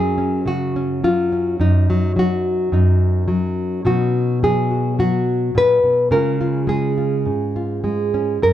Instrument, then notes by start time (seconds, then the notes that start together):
nylon-string guitar
Already playing: F#2 F#3 C#4 G#4
0.18 C#4
0.46 C#3 F#4
0.76 C#4
1.04 F#3 F4
1.32 C#4
1.60 F#2 D#4
1.90 F#3
2.16 F#3 F#4
2.72 F#2 D#4
3.28 F#3
3.85 B2 F#3 D#4 F#4
4.43 F#3 G#4
4.71 F#4
4.99 F#3 F#4
5.55 A#2 B4
5.84 B2
6.11 C#3 G#3 C#4 F4 A#4
6.41 F4
6.67 G#3 G#4
6.98 F4
7.26 G#2
7.56 F4
7.84 G#3
8.14 C#4
8.42 F#2 A#4